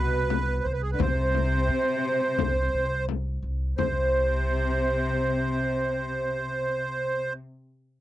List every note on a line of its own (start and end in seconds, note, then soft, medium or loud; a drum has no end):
0.00 0.61 C2 medium
0.00 0.63 B2 medium
0.00 0.44 B3 medium
0.00 0.67 B4 loud
0.30 frame drum medium
0.46 0.62 B3 medium
0.63 0.97 C2 medium
0.63 0.72 C5 medium
0.73 0.82 B4 medium
0.82 0.91 G#4 medium
0.91 1.00 D3 medium
0.91 1.00 B4 medium
0.99 1.65 C2 loud
0.99 3.09 C3 loud
0.99 1.06 C4 medium
0.99 3.05 C5 medium
0.99 frame drum medium
1.07 1.12 C4 medium
1.13 1.20 C4 medium
1.21 1.28 C4 medium
1.30 1.36 C4 medium
1.35 1.43 C4 medium
1.35 frame drum medium
1.45 1.50 C4 medium
1.52 1.58 C4 soft
1.59 1.67 C4 medium
1.68 2.35 C3 medium
1.68 1.73 C4 soft
1.74 1.81 C4 medium
1.83 1.89 C4 soft
1.90 1.97 C4 medium
1.98 2.04 C4 soft
2.05 2.11 C4 medium
2.12 2.19 C4 soft
2.20 2.26 C4 medium
2.27 2.33 C4 soft
2.34 2.71 C2 medium
2.34 2.40 C4 medium
2.39 2.48 C4 medium
2.39 frame drum medium
2.49 2.54 C4 medium
2.56 2.62 C4 soft
2.63 2.70 C4 medium
2.71 3.39 C2 medium
2.71 2.77 C4 medium
2.78 2.84 C4 medium
2.85 2.93 C4 medium
3.09 frame drum medium
3.43 3.75 C2 medium
3.78 7.34 C2 medium
3.78 7.34 C3 loud
3.78 7.34 C4 medium
3.78 7.33 C5 medium
3.78 frame drum medium